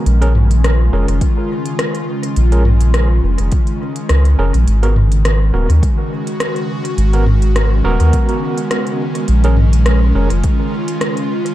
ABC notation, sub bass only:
X:1
M:4/4
L:1/16
Q:"Swing 16ths" 1/4=104
K:A#phr
V:1 name="Sub bass" clef=bass
A,,,6 E,,, E,,, z8 | A,,,6 E,,, E,,, z4 C,,2 E,,, A,,, | G,,,6 D,,, D,, z8 | G,,,6 D,,, D,, z8 |
A,,,6 E,,, E,,, z8 |]